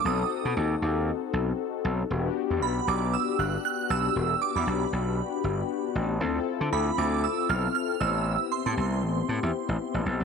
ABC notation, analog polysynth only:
X:1
M:4/4
L:1/8
Q:"Swing 16ths" 1/4=117
K:Bphr
V:1 name="Analog polysynth"
[C^DFA]8 | [K:Em] [B,DFG]8- | [B,DFG]8 | [CE=FA]6- [CEFA] [B,CEG]- |
[B,CEG]8 |]